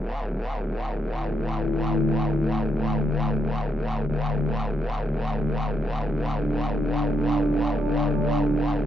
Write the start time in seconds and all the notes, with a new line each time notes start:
Already playing: D1 D3 A3 E4
4.08 D1 D4
4.60 open hi-hat
5.28 open hi-hat
5.96 open hi-hat
6.64 open hi-hat
7.33 open hi-hat
8.01 open hi-hat
8.69 open hi-hat